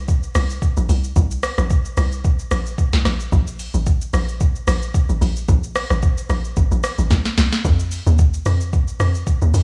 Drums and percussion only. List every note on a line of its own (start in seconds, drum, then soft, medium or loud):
0.08 kick loud
0.08 shaker medium
0.23 shaker soft
0.35 cross-stick loud
0.35 open hi-hat medium
0.35 shaker loud
0.50 shaker medium
0.62 kick medium
0.62 shaker medium
0.77 shaker medium
0.89 open hi-hat medium
0.89 shaker medium
1.04 shaker medium
1.16 kick loud
1.16 shaker medium
1.31 shaker medium
1.43 cross-stick loud
1.43 open hi-hat medium
1.43 shaker loud
1.58 cross-stick medium
1.58 shaker medium
1.70 kick loud
1.70 shaker medium
1.85 shaker medium
1.97 cross-stick medium
1.97 open hi-hat medium
1.97 shaker medium
2.12 shaker medium
2.24 kick loud
2.24 shaker medium
2.39 shaker soft
2.51 cross-stick loud
2.51 open hi-hat medium
2.51 shaker loud
2.66 shaker medium
2.78 kick medium
2.78 shaker medium
2.93 snare medium
2.93 shaker medium
3.05 cross-stick medium
3.05 snare medium
3.05 open hi-hat medium
3.05 shaker medium
3.20 shaker medium
3.32 kick loud
3.32 shaker medium
3.47 shaker medium
3.59 open hi-hat medium
3.59 shaker loud
3.74 shaker medium
3.86 kick loud
3.86 shaker medium
4.01 shaker medium
4.13 cross-stick medium
4.13 open hi-hat medium
4.13 shaker medium
4.28 shaker medium
4.41 kick loud
4.41 shaker medium
4.56 shaker soft
4.68 cross-stick loud
4.68 open hi-hat medium
4.68 shaker loud
4.82 shaker medium
4.94 kick medium
4.94 shaker medium
5.09 shaker medium
5.22 open hi-hat medium
5.22 shaker medium
5.36 shaker medium
5.49 kick loud
5.49 shaker medium
5.63 shaker medium
5.75 cross-stick loud
5.75 open hi-hat medium
5.75 shaker loud
5.90 cross-stick medium
5.90 shaker medium
6.02 kick loud
6.02 shaker medium
6.18 shaker medium
6.30 cross-stick medium
6.30 open hi-hat medium
6.30 shaker loud
6.44 shaker soft
6.57 kick loud
6.57 shaker medium
6.72 shaker soft
6.84 cross-stick loud
6.84 open hi-hat medium
6.84 shaker loud
6.98 shaker medium
7.11 kick medium
7.11 snare medium
7.11 shaker medium
7.25 snare medium
7.25 shaker medium
7.38 snare loud
7.38 open hi-hat medium
7.38 shaker medium
7.52 snare loud
7.52 shaker medium
7.65 kick loud
7.65 shaker medium
7.80 shaker medium
7.92 open hi-hat medium
7.92 shaker loud
8.07 shaker medium
8.19 kick loud
8.19 shaker medium
8.34 shaker medium
8.46 cross-stick medium
8.46 open hi-hat medium
8.46 shaker medium
8.61 shaker medium
8.73 kick loud
8.73 shaker medium
8.88 shaker soft
9.00 cross-stick loud
9.00 open hi-hat medium
9.00 shaker loud
9.15 shaker medium
9.27 kick loud
9.27 shaker medium
9.42 shaker medium
9.54 open hi-hat medium
9.54 shaker loud